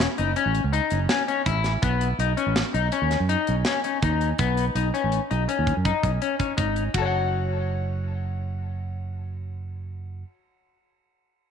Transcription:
0.00 snare, closed hi-hat
0.18 fingered electric bass F#1, clean electric guitar D#4, closed hi-hat
0.36 clean electric guitar C#4, closed hi-hat
0.46 fingered electric bass A1
0.55 closed hi-hat
0.64 fingered electric bass C#2
0.73 clean electric guitar D#4, closed hi-hat
0.90 fingered electric bass F#1, closed hi-hat
1.09 clean electric guitar C#4, snare, closed hi-hat
1.28 clean electric guitar C#4, closed hi-hat
1.46 fingered electric bass A1, clean electric guitar E4, kick, closed hi-hat
1.64 snare, closed hi-hat
1.82 fingered electric bass B1, clean electric guitar B3, kick, closed hi-hat
2.01 closed hi-hat
2.19 fingered electric bass B1, clean electric guitar D#4, closed hi-hat
2.37 clean electric guitar C#4, closed hi-hat
2.46 fingered electric bass A1
2.56 snare, closed hi-hat
2.74 fingered electric bass B1, clean electric guitar D#4, closed hi-hat
2.92 clean electric guitar C#4, closed hi-hat
3.02 fingered electric bass D#2
3.11 snare, closed hi-hat
3.20 fingered electric bass F#2
3.29 clean electric guitar D#4, closed hi-hat
3.47 fingered electric bass B1, closed hi-hat
3.65 clean electric guitar C#4, snare, closed hi-hat
3.84 clean electric guitar C#4, closed hi-hat
4.02 fingered electric bass D#2, clean electric guitar D#4, kick, closed hi-hat
4.21 closed hi-hat
4.38 fingered electric bass B1, clean electric guitar B3, kick, closed hi-hat
4.57 closed hi-hat
4.75 fingered electric bass B1, clean electric guitar D#4, closed hi-hat
4.94 clean electric guitar C#4, closed hi-hat
5.04 fingered electric bass A1
5.12 closed hi-hat
5.31 fingered electric bass B1, clean electric guitar D#4, closed hi-hat
5.49 clean electric guitar C#4, closed hi-hat
5.59 fingered electric bass D#2
5.67 kick, closed hi-hat
5.77 fingered electric bass F#2
5.85 clean electric guitar D#4, kick, closed hi-hat
6.03 fingered electric bass B1, kick, closed hi-hat
6.22 clean electric guitar C#4, closed hi-hat
6.39 clean electric guitar C#4, kick, closed hi-hat
6.57 fingered electric bass G#1, clean electric guitar D#4, kick, closed hi-hat
6.76 closed hi-hat
6.94 fingered electric bass F#1, clean electric guitar F#4 A4, kick, ride bell
7.02 clean electric guitar C#5 F#5

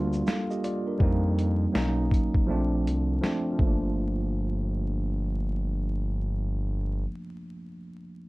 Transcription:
Already playing: analog synth bass D2, tine electric piano G3 A#3 D4 F4
0.13 shaker
0.27 tine electric piano A4 F5, snare, shaker
0.50 tine electric piano G4 D#5, shaker
0.64 tine electric piano F4 D5, closed hi-hat, shaker
0.87 tine electric piano D4 A#4
0.99 analog synth bass F2, tine electric piano G3 A#3 C4 D#4, kick
1.39 closed hi-hat
1.73 analog synth bass B1, tine electric piano F#3 A#3 C#4, snare
1.77 tine electric piano D#4
2.11 kick, closed hi-hat
2.34 kick
2.47 analog synth bass A#1, tine electric piano F3 A3 C4 D4
2.86 analog synth bass C2, closed hi-hat
3.21 tine electric piano F3 A3 C4 D4, snare
3.52 tine electric piano F3
3.57 analog synth bass G1, tine electric piano A3, kick
3.62 tine electric piano A#3
3.67 tine electric piano D4

